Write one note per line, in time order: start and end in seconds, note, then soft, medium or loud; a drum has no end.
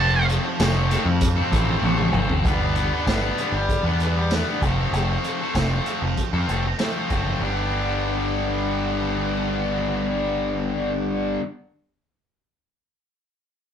0.00 0.37 F1 loud
0.00 0.58 F2 medium
0.00 0.58 C3 loud
0.00 0.59 F3 medium
0.00 0.59 A3 loud
0.00 0.45 A3 loud
0.00 0.59 C4 loud
0.00 0.45 C4 loud
0.00 0.45 F4 loud
0.00 0.44 A4 loud
0.00 0.26 A5 loud
0.29 closed hi-hat medium
0.46 muted distorted electric guitar stroke medium
0.60 0.95 F1 medium
0.60 2.12 F2 medium
0.60 2.12 C3 medium
0.60 1.22 F3 medium
0.60 2.13 F3 medium
0.60 0.89 A3 loud
0.60 2.13 A3 medium
0.60 0.91 C4 loud
0.60 2.14 C4 medium
0.60 0.90 F4 loud
0.60 0.91 A4 medium
0.60 snare loud
0.60 closed hi-hat loud
0.60 tambourine loud
0.90 1.06 A3 medium
0.90 1.06 C4 medium
0.90 1.06 F4 medium
0.90 1.05 A4 medium
0.90 snare soft
0.90 closed hi-hat medium
1.05 1.40 F2 medium
1.05 muted distorted electric guitar stroke medium
1.21 kick medium
1.21 closed hi-hat loud
1.36 1.51 C4 medium
1.36 1.53 F4 medium
1.36 1.53 A4 medium
1.52 1.75 A1 medium
1.52 1.84 A3 medium
1.52 1.70 C4 medium
1.52 1.69 F4 medium
1.52 1.68 A4 medium
1.52 kick medium
1.52 closed hi-hat medium
1.69 1.84 C4 medium
1.69 1.84 F4 medium
1.69 1.85 A4 medium
1.82 2.10 A1 medium
1.82 2.44 F3 loud
1.82 2.14 A3 loud
1.82 2.14 C4 loud
1.82 2.15 F4 loud
1.82 2.16 A4 loud
1.82 high tom medium
1.98 mid tom medium
2.12 2.41 G1 medium
2.12 2.44 A3 medium
2.12 2.31 C4 medium
2.12 mid tom loud
2.16 2.31 F4 medium
2.16 2.30 A4 medium
2.30 2.44 C4 medium
2.30 2.44 F4 medium
2.30 2.44 A4 medium
2.30 floor tom loud
2.44 2.91 G1 loud
2.44 2.91 G2 medium
2.44 2.75 D3 medium
2.44 2.63 G3 medium
2.44 3.08 G3 medium
2.44 2.60 B3 medium
2.44 2.94 B3 loud
2.44 2.59 D4 medium
2.44 2.94 D4 medium
2.44 2.92 B4 loud
2.44 kick loud
2.44 closed hi-hat medium
2.61 2.76 G3 medium
2.61 2.77 B3 medium
2.61 2.78 D4 medium
2.76 3.06 D3 medium
2.76 2.94 G3 medium
2.76 2.93 B3 medium
2.76 2.91 D4 medium
2.76 closed hi-hat medium
2.92 3.05 G3 soft
2.92 3.07 B3 medium
2.92 3.09 B3 medium
2.92 3.07 D4 medium
2.92 3.08 D4 soft
2.92 3.09 B4 medium
3.05 3.30 G1 medium
3.05 3.68 G2 medium
3.05 3.35 D3 medium
3.05 3.37 G3 medium
3.05 3.39 G3 medium
3.05 3.38 B3 medium
3.05 3.38 D4 loud
3.05 kick medium
3.05 snare loud
3.05 closed hi-hat medium
3.05 tambourine loud
3.09 3.40 B3 medium
3.09 3.40 D4 medium
3.09 3.42 B4 medium
3.37 3.83 D3 medium
3.37 3.54 G3 medium
3.37 3.85 G3 medium
3.37 3.53 B3 medium
3.37 3.50 D4 medium
3.37 closed hi-hat medium
3.42 3.55 B3 medium
3.42 3.56 D4 medium
3.42 3.54 B4 medium
3.52 3.76 G1 medium
3.52 3.86 G3 medium
3.52 3.84 B3 medium
3.52 3.82 D4 medium
3.56 muted distorted electric guitar stroke soft
3.69 kick medium
3.69 closed hi-hat medium
3.83 4.42 E2 medium
3.83 4.14 B3 medium
3.83 4.02 B3 medium
3.83 4.12 D4 medium
3.83 4.02 D4 medium
3.83 4.03 B4 medium
3.87 4.16 G3 soft
4.00 4.33 G3 medium
4.00 4.17 B3 medium
4.00 4.17 D4 medium
4.00 4.16 B4 medium
4.00 closed hi-hat soft
4.13 4.30 G3 medium
4.13 4.31 B3 medium
4.13 4.32 D4 medium
4.18 muted distorted electric guitar stroke soft
4.30 4.59 G2 medium
4.30 4.60 D3 medium
4.30 4.60 G3 medium
4.30 4.60 B3 medium
4.30 4.61 D4 medium
4.30 snare loud
4.30 closed hi-hat medium
4.30 tambourine loud
4.34 4.61 G3 medium
4.34 4.62 B3 medium
4.34 4.62 D4 medium
4.34 4.62 B4 loud
4.60 4.85 F1 medium
4.60 4.90 F2 medium
4.60 4.90 C3 medium
4.60 4.78 F3 medium
4.60 4.93 F3 medium
4.60 4.76 A3 medium
4.60 4.74 C4 medium
4.60 kick medium
4.60 closed hi-hat medium
4.65 4.94 A3 medium
4.65 4.94 C4 medium
4.65 4.95 F4 medium
4.65 4.95 A4 medium
4.75 4.91 F3 medium
4.75 4.92 A3 medium
4.75 4.93 C4 medium
4.91 5.16 F1 loud
4.91 5.38 F2 medium
4.91 5.21 C3 medium
4.91 5.08 F3 medium
4.91 5.55 F3 medium
4.91 5.07 A3 medium
4.91 5.55 A3 medium
4.91 5.05 C4 medium
4.91 closed hi-hat medium
4.95 5.42 C4 medium
4.95 5.41 F4 medium
4.95 5.40 A4 medium
5.07 5.21 F3 soft
5.07 5.23 A3 medium
5.07 5.24 C4 medium
5.23 5.54 C3 medium
5.23 5.40 F3 medium
5.23 5.39 A3 medium
5.23 5.37 C4 medium
5.23 closed hi-hat medium
5.38 5.54 F3 medium
5.38 5.55 A3 medium
5.38 5.56 C4 medium
5.38 5.56 F4 medium
5.38 5.57 A4 medium
5.43 5.56 C4 soft
5.55 5.78 F1 medium
5.55 6.17 F2 medium
5.55 5.83 C3 medium
5.55 5.84 F3 medium
5.55 6.18 F3 medium
5.55 5.85 A3 medium
5.55 5.87 A3 medium
5.55 5.87 C4 medium
5.55 5.88 F4 medium
5.55 5.88 A4 medium
5.55 kick medium
5.55 snare medium
5.55 closed hi-hat medium
5.55 tambourine medium
5.85 6.32 C3 medium
5.85 6.03 F3 medium
5.85 6.02 A3 medium
5.85 6.01 C4 medium
5.85 6.02 C4 medium
5.85 closed hi-hat medium
5.89 6.02 F4 medium
5.89 6.02 A4 medium
6.02 6.13 F1 medium
6.02 6.34 F3 soft
6.02 6.32 A3 medium
6.02 6.30 C4 medium
6.02 muted distorted electric guitar stroke soft
6.17 kick medium
6.17 closed hi-hat medium
6.31 6.44 F2 medium
6.31 6.66 F3 medium
6.31 6.65 A3 medium
6.31 6.63 C4 medium
6.31 6.50 F4 medium
6.31 6.50 A4 medium
6.35 6.50 C4 soft
6.49 6.72 F1 medium
6.49 6.64 A3 medium
6.49 6.64 C4 medium
6.49 6.64 F4 medium
6.49 6.64 A4 medium
6.49 closed hi-hat medium
6.64 6.79 F3 soft
6.64 6.79 A3 medium
6.64 6.81 C4 medium
6.64 muted distorted electric guitar stroke soft
6.79 7.39 F2 medium
6.79 7.10 C3 medium
6.79 7.39 F3 medium
6.79 7.10 F3 medium
6.79 7.09 A3 medium
6.79 7.12 A3 medium
6.79 7.10 C4 medium
6.79 7.13 C4 medium
6.79 7.11 F4 medium
6.79 7.11 A4 medium
6.79 snare loud
6.79 closed hi-hat medium
6.79 tambourine loud
7.10 7.34 F#1 medium
7.10 7.40 C3 medium
7.10 7.29 F3 medium
7.10 7.39 A3 medium
7.10 7.28 A3 medium
7.10 7.40 C4 medium
7.10 7.26 C4 medium
7.10 7.40 F4 medium
7.10 7.40 A4 medium
7.10 kick medium
7.10 closed hi-hat medium
7.27 7.42 F3 soft
7.27 7.41 A3 medium
7.27 7.40 C4 medium
7.40 11.36 G1 medium
7.40 11.40 G2 medium
7.40 11.41 D3 medium
7.40 11.41 G3 medium
7.40 11.42 B3 medium
7.40 11.42 D4 medium
7.45 11.42 D4 medium
7.45 11.42 G4 medium